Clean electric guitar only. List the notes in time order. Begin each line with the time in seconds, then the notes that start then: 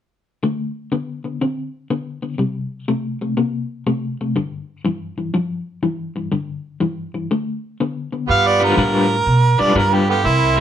0.43 D3 A3
0.92 D3 B3
1.24 D3 B3
1.41 D3 C4
1.90 D3 B3
2.22 D3 B3
2.38 C3 G3
2.88 C3 A3
3.21 C3 A3
3.37 C3 A#3
3.87 C3 A3
4.21 C3 A3
4.36 G2 D3
4.85 G2 E3
5.18 G2 E3
5.34 G2 F3
5.83 G2 E3
6.16 G2 E3
6.32 G2 D3
6.80 G2 E3
7.14 G2 E3
7.31 D3 A3
7.80 D3 B3
8.12 D3 B3
8.60 G3 D4 F4 B4
8.77 G3 D4 F4 B4
9.58 G3 D4 F4 B4
9.75 G3 D4 F4 B4
10.56 A#4 E5